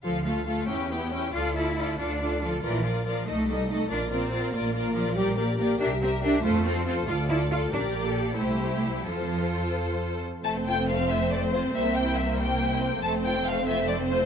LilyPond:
<<
  \new Staff \with { instrumentName = "Violin section" } { \time 6/8 \key d \minor \tempo 4. = 93 f''8 f''8 f''8 g''8 g''8 g''8 | d''8 d''8 d''8 d''8 d''8 d''8 | d''8 d''8 d''8 ees''8 ees''8 ees''8 | d''8 d''8 d''8 d''8 d''8 d''8 |
\key f \major d''8 d''8 d''8 e''8 e''8 e''8 | c''8 c''8 c''8 d''8 d''8 d''8 | d''4. c''4. | c''2~ c''8 r8 |
a''8 g''8 f''8 e''8 d''8 c''8 | e''8 g''8 e''8 g''4. | a''8 g''8 f''8 e''8 d''8 c''8 | }
  \new Staff \with { instrumentName = "Violin section" } { \time 6/8 \key d \minor << { a'8 a'8 a'8 g'8 g'8 g'8 | a'8 a'8 a'8 a'8 a'8 a'8 | bes'8 bes'8 bes'8 a'8 a'8 a'8 | bes'8 bes'8 bes'8 bes'8 bes'8 bes'8 |
\key f \major bes'8 bes'8 bes'8 bes'8 bes'8 bes'8 | a'8 a'8 a'8 a'8 a'8 a'8 | bes'8. a'8. g'4. | a'2~ a'8 r8 |
c''2.~ | c''2. | c''2. | } \\ { r2. | r2. | r2. | r2. |
r2. | r2. | r2. | r2. |
a16 c'16 f'16 c'16 a16 c'16 f'16 c'16 a16 c'16 f'16 c'16 | g16 bes16 c'16 e'16 c'16 bes16 g16 bes16 c'16 e'16 c'16 bes16 | a16 c'16 f'16 c'16 a16 c'16 f'16 c'16 a16 c'16 f'16 c'16 | } >> }
  \new Staff \with { instrumentName = "Viola section" } { \time 6/8 \key d \minor << { f'8 f'8 f'8 e'8 e'8 e'8 | f'8 f'8 f'8 f'8 f'8 f'8 | f'8 f'8 f'8 ees'8 ees'8 ees'8 | f'8 f'8 f'8 f'8 f'8 f'8 |
\key f \major g'8 g'8 g'8 g'8 g'8 g'8 | f'8 f'8 f'8 f'8 f'8 f'8 | g'4. e'4. | f'2~ f'8 r8 |
a2. | bes2. | a2. | } \\ { r2. | r2. | r2. | r2. |
r2. | r2. | r2. | r2. |
c'2.~ | c'2. | c'2. | } >> }
  \new Staff \with { instrumentName = "Cello section" } { \time 6/8 \key d \minor f8 a8 a8 cis'8 b8 cis'8 | f'8 e'4 d'4 f8 | e8 f8 f8 a8 g8 a8 | d'8 c'4 bes4 f8 |
\key f \major g8 bes8 bes8 d'8 c'8 d'8 | a8 c'8 c'8 f'8 e'8 f'8 | d'8 bes4 a4 g8 | f4. r4. |
f,2. | c,2. | f,2. | }
  \new Staff \with { instrumentName = "Double bass section" } { \clef bass \time 6/8 \key d \minor d,4. e,4. | d,4. d,4. | bes,,4. c,4. | bes,,4. bes,,4. |
\key f \major bes,,4. c,4. | f,4. d,4. | bes,,4. c,4. | f,2~ f,8 r8 |
f,,2. | c,2. | f,,2. | }
>>